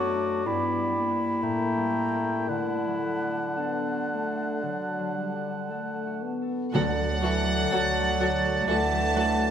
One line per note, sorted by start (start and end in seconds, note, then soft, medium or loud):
0.00 0.50 F#2 soft
0.00 0.43 F#3 medium
0.00 0.50 F#3 soft
0.00 0.51 A3 soft
0.00 0.47 A3 soft
0.00 0.14 D4 soft
0.00 0.48 F#4 loud
0.00 0.50 A4 soft
0.00 1.09 D5 medium
0.00 0.48 A5 medium
0.15 1.08 D4 soft
0.46 1.47 G2 soft
0.46 1.41 G3 soft
0.46 0.93 B3 medium
0.46 2.49 E4 medium
0.46 1.45 B5 soft
0.76 1.76 G3 soft
0.96 2.50 A#3 medium
1.09 1.47 D4 soft
1.09 1.47 B4 soft
1.42 2.53 A2 soft
1.42 2.50 A3 medium
1.42 2.50 G5 soft
1.42 2.49 A#5 soft
1.77 2.53 G3 soft
2.13 2.53 C#4 soft
2.13 2.53 A#4 soft
2.48 6.40 D3 soft
2.48 4.61 D3 soft
2.48 3.46 A3 soft
2.48 3.59 E4 medium
2.48 6.40 F#5 soft
2.48 6.37 A5 soft
2.86 4.97 F#3 soft
3.21 5.34 D4 soft
3.56 4.06 B3 medium
3.56 5.70 D4 medium
3.56 4.26 A4 soft
3.93 6.06 F#4 soft
4.12 4.64 A3 soft
4.27 5.69 A4 soft
4.63 6.74 D3 soft
4.63 5.16 F#3 soft
4.99 6.98 F#3 soft
5.16 5.70 G3 medium
5.35 8.67 D4 soft
5.69 6.23 A3 medium
5.69 6.41 A4 soft
6.07 8.21 F#4 soft
6.23 6.74 B3 soft
6.42 7.23 A4 soft
6.73 7.61 D2 medium
6.73 7.20 D3 medium
6.73 8.16 D3 medium
6.73 9.51 D3 medium
6.73 6.81 F#3 medium
6.73 9.51 F#3 medium
6.73 8.64 F#3 medium
6.73 6.81 F#4 medium
6.73 6.82 A4 medium
6.73 9.51 A4 medium
6.73 9.51 D5 medium
6.73 8.63 F#5 medium
6.73 6.82 F#5 medium
6.73 9.51 A5 medium
6.99 8.92 F#3 soft
7.22 7.74 E3 medium
7.22 7.30 F#3 medium
7.22 7.30 F#4 medium
7.22 7.32 A4 soft
7.22 8.43 A4 medium
7.22 7.31 F#5 soft
7.50 7.96 F#5 soft
7.71 8.57 D2 medium
7.71 8.66 F#3 medium
7.71 7.80 F#3 medium
7.71 7.80 F#4 medium
7.71 7.79 A4 medium
7.71 7.79 F#5 medium
7.71 9.51 A5 medium
7.97 9.38 F#5 soft
8.20 8.28 F#3 medium
8.20 8.28 F#4 medium
8.20 9.51 F#4 soft
8.20 8.28 A4 soft
8.20 8.28 F#5 medium
8.45 9.14 A4 soft
8.67 9.51 D2 medium
8.67 9.51 E3 medium
8.67 8.76 F#3 medium
8.67 9.51 A3 medium
8.67 9.51 D4 soft
8.67 8.76 F#4 medium
8.67 8.75 A4 soft
8.67 8.76 F#5 medium
8.67 9.51 F#5 medium
8.67 9.51 A5 medium
8.93 9.51 F#3 soft
9.15 9.24 F#3 soft
9.15 9.23 F#4 soft
9.15 9.23 A4 soft
9.15 9.51 A4 soft
9.15 9.24 F#5 soft
9.39 9.51 F#5 soft